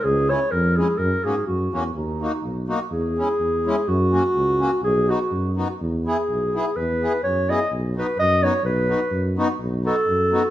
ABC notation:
X:1
M:2/4
L:1/16
Q:1/4=126
K:B
V:1 name="Clarinet"
G2 c2 A2 G2 | A2 G2 F3 z | D6 z2 | G8 |
F8 | G2 F4 z2 | [K:E] z2 G6 | B4 c2 d2 |
z2 B2 d2 c2 | B6 z2 | z2 A6 |]
V:2 name="Accordion"
z2 [G,CE]2 z2 [G,CE]2 | z2 [A,CF]2 z2 [A,CF]2 | z2 [A,DF]2 z2 [A,DF]2 | z2 [G,CE]2 z2 [G,CE]2 |
z2 [A,CF]2 z2 [A,CF]2 | z2 [B,DF]2 z2 [B,DF]2 | [K:E] z2 [B,EG]2 z2 [B,EG]2 | z2 [B,EG]2 z2 [B,EG]2 |
z2 [B,DF]2 z2 [B,DF]2 | z2 [B,DF]2 z2 [B,DF]2 | z2 [B,DF]2 z2 [B,DF]2 |]
V:3 name="Tuba" clef=bass
C,,4 ^E,,4 | F,,2 G,,2 F,,2 E,,2 | D,,4 B,,,4 | E,,4 E,,4 |
F,,4 C,,4 | B,,,4 F,,4 | [K:E] E,,4 B,,,4 | E,,4 F,,4 |
B,,,4 F,,4 | B,,,4 F,,4 | B,,,4 F,,4 |]